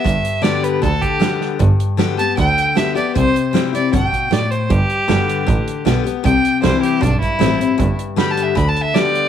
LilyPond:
<<
  \new Staff \with { instrumentName = "Fiddle" } { \time 4/4 \key g \major \tempo 4 = 155 e''4 d''8 b'8 a'8 g'4 r8 | r4. a''8 g''4 e''8 d''8 | c''4 r8 d''8 g''4 d''8 c''8 | g'2. r4 |
g''4 c''8 g'8 d'8 e'4.~ | e'8 r8 \tuplet 3/2 { b''8 a''8 e''8 b''8 a''8 e''8 } d''4 | }
  \new Staff \with { instrumentName = "Steel-string acoustic guitar" } { \clef bass \time 4/4 \key g \major << { r4 <d g b g'>4 r4 <d g b g'>4 | r4 <d g b g'>8 <b g'>8 r4 <d g b g'>8 <b g'>8 | r4 <e g c' e'>8 <c' e'>8 r2 | r4 <d g b g'>4 r4 <d g b g'>8 <b g'>8 |
r4 <e g c' e'>4 r4 <e g c' e'>8 <c' e'>8 | r4 <d g b g'>4 r4 <d g b g'>4 | } \\ { g,2 d2 | g,2 d2 | c2 b,4 a,4 | g,2 d2 |
c2 g,2 | g,2 d2 | } >> }
  \new Staff \with { instrumentName = "Double bass" } { \clef bass \time 4/4 \key g \major g,,2 d,2 | g,,2 d,2 | c,2 g,,2 | g,,4 g,,4 a,,4 b,,4 |
c,4 c,4 b,,4 a,,4 | g,,2 d,2 | }
  \new DrumStaff \with { instrumentName = "Drums" } \drummode { \time 4/4 <hh bd>8 hh8 <hh sn>8 hh8 <hh bd>8 <hh bd>8 <hh sn>8 sn8 | <hh bd>8 hh8 <hh sn>8 hh8 <hh bd>8 hh8 <hh sn>8 hh8 | <hh bd>8 hh8 <hh sn>8 hh8 <hh bd>8 <hh bd>8 <hh sn>8 hh8 | <hh bd>8 hh8 <hh sn>8 hh8 <hh bd>8 hh8 <hh sn>8 hh8 |
<hh bd>8 hh8 <hh sn>8 hh8 <hh bd>8 <hh bd>8 <hh sn>8 hh8 | <hh bd>8 hh8 <hh sn>8 hh8 <hh bd>8 hh8 <hh sn>8 hh8 | }
>>